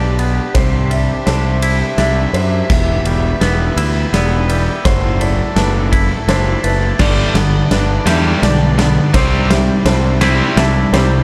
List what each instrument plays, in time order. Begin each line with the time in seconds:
Already playing: fingered electric bass B1, clean electric guitar G2 B3 D4 G4, string section D4 G4 B4 D5, felt piano D5
0.19 clean electric guitar B3, ride
0.54 fingered electric bass C2, clean electric guitar C3, string section D4 C5 E5, felt piano C5, kick, snare, ride
0.90 clean electric guitar G3, felt piano E5, ride
1.26 fingered electric bass C2, clean electric guitar D4, felt piano C5, snare, ride
1.62 clean electric guitar E4, ride
1.98 fingered electric bass C2, clean electric guitar D4, felt piano E5, snare, ride
2.33 fingered electric bass F#2, felt piano C5, ride
2.70 fingered electric bass E1, clean electric guitar E2, string section E4 B4, felt piano E5, kick, snare, crash
3.04 fingered electric bass E1, clean electric guitar G3, ride
3.41 fingered electric bass E1, clean electric guitar B3, felt piano B4, snare, ride
3.76 fingered electric bass D2, clean electric guitar E4, felt piano E5, ride
4.12 fingered electric bass E1, clean electric guitar B3, felt piano D5, snare, ride
4.49 clean electric guitar G3, ride
4.85 fingered electric bass F#1, clean electric guitar F#3, string section F#3 A4 D5, felt piano C5, kick, snare, ride
5.20 clean electric guitar A3, felt piano D5, ride
5.56 fingered electric bass F#1, clean electric guitar D4, felt piano B4, snare, ride
5.92 clean electric guitar E4, kick, ride
6.27 fingered electric bass F#1, clean electric guitar D4, felt piano C5, snare, ride
6.63 fingered electric bass F#1, clean electric guitar A3, felt piano B4, ride
6.99 fingered electric bass G1, distorted electric guitar G2 D3 G3, clean electric guitar G2, string section G3 D4 B4, felt piano D5, kick, snare, crash
7.34 fingered electric bass G1, distorted electric guitar G2 D3, clean electric guitar B3, snare, ride
7.70 fingered electric bass G1, clean electric guitar D4, felt piano B4, snare, ride
8.06 fingered electric bass E2, distorted electric guitar G2 D3 G3, clean electric guitar G4, felt piano E5, snare, ride
8.42 fingered electric bass B1, distorted electric guitar G2 D3, clean electric guitar D4, felt piano D5, snare, ride
8.78 distorted electric guitar G2 D3, clean electric guitar B3, snare, ride
9.14 fingered electric bass C2, clean electric guitar C3, distorted electric guitar C3 G3 C4, string section E4 C5, felt piano C5, kick, snare, ride
9.50 distorted electric guitar C3 G3, clean electric guitar G3, felt piano E5, snare, ride
9.85 fingered electric bass C2, clean electric guitar D4, felt piano C5, snare, ride
10.21 distorted electric guitar C3 G3 C4, clean electric guitar E4, snare, ride
10.56 fingered electric bass C2, distorted electric guitar C3 G3, clean electric guitar D4, felt piano E5, snare, ride
10.92 fingered electric bass C2, distorted electric guitar C3 G3, clean electric guitar G3, felt piano C5, snare, ride